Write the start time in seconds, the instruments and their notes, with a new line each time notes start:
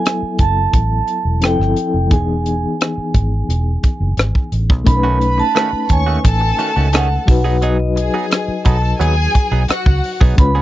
Already playing: reed electric piano F#3 B3 E4 A4 E5, vibraphone G#5
0.06 cross-stick, closed hi-hat
0.23 muted fingered electric bass stroke
0.39 fingered electric bass F#1, vibraphone A5, kick, closed hi-hat
0.73 fingered electric bass A1, kick, closed hi-hat
1.08 closed hi-hat
1.25 fingered electric bass E1
1.40 fingered electric bass F1, reed electric piano F3 C4 E4 A4, closed hi-hat
1.44 vibraphone G5, cross-stick
1.59 fingered electric bass G1, cross-stick
1.77 closed hi-hat
1.94 fingered electric bass F1
2.07 reed electric piano E3 B3
2.11 fingered electric bass E1, reed electric piano D#4 G#4, vibraphone G#5, kick, closed hi-hat
2.46 closed hi-hat
2.81 cross-stick, closed hi-hat
2.98 muted fingered electric bass stroke
3.14 fingered electric bass G#1, kick, closed hi-hat
3.49 fingered electric bass E1, closed hi-hat
3.83 kick, closed hi-hat
4.00 fingered electric bass F#1
4.17 fingered electric bass G#1, cross-stick, closed hi-hat
4.35 kick
4.52 fingered electric bass A1, closed hi-hat
4.70 fingered electric bass B1, kick
4.84 fingered electric bass B1, reed electric piano A3 C#4, vibraphone B5, muted clean electric guitar stroke, kick, closed hi-hat
4.89 reed electric piano D#4 A#4
4.97 reed electric piano B4
5.03 clean electric guitar D#3 A3 C#4 F#4
5.21 violin section B4 B5, closed hi-hat
5.38 vibraphone A5, muted clean electric guitar stroke
5.55 clean electric guitar D#3 A3 C#4 F#4, cross-stick, closed hi-hat
5.73 muted fingered electric bass stroke
5.89 fingered electric bass D#2, violin section C#5 C#6, vibraphone G#5, muted clean electric guitar stroke, kick, closed hi-hat
6.06 clean electric guitar D#3 A3 C#4 F#4
6.24 fingered electric bass A1, violin section A4 A5, muted clean electric guitar stroke, kick, closed hi-hat
6.41 muted clean electric guitar stroke
6.58 clean electric guitar D#3 A3 C#4 F#4, closed hi-hat
6.76 fingered electric bass C#2, clean electric guitar D#3 A3 C#4 F#4
6.93 clean electric guitar D#3 A3 C#4 G#4, vibraphone F#5, cross-stick, closed hi-hat
7.25 fingered electric bass B1, reed electric piano F#3 D#4, muted clean electric guitar stroke, kick, open hi-hat
7.30 reed electric piano F#4 B4
7.44 clean electric guitar F#3 B3 D#4 G#4
7.62 clean electric guitar F#3 B3 D#4 G#4, vibraphone D#5, closed hi-hat
7.96 violin section G#4 G#5, muted clean electric guitar stroke, closed hi-hat
8.14 clean electric guitar F#3 B3 D#4 G#4
8.30 muted clean electric guitar stroke, cross-stick, closed hi-hat
8.48 muted fingered electric bass stroke
8.65 fingered electric bass B1, clean electric guitar F#3 B3 D#4 G#4, violin section A4 A5, kick, closed hi-hat
8.83 muted clean electric guitar stroke
9.00 fingered electric bass D#2, clean electric guitar F#3 B3 D#4 G#4, violin section G#4 G#5, closed hi-hat
9.34 muted clean electric guitar stroke, kick, closed hi-hat
9.52 fingered electric bass B1, clean electric guitar F#3 B3 D#4 G#4
9.68 violin section F#4 F#5, muted clean electric guitar stroke, cross-stick, closed hi-hat
9.86 fingered electric bass C#2, muted clean electric guitar stroke, kick
10.04 open hi-hat
10.21 fingered electric bass B1, clean electric guitar F#3 B3 D#4 G#4, kick
10.35 fingered electric bass C#2, reed electric piano G#3 C#4, vibraphone B5, kick, closed hi-hat
10.39 reed electric piano F4 B4
10.55 clean electric guitar F3 B3 C#4 G#4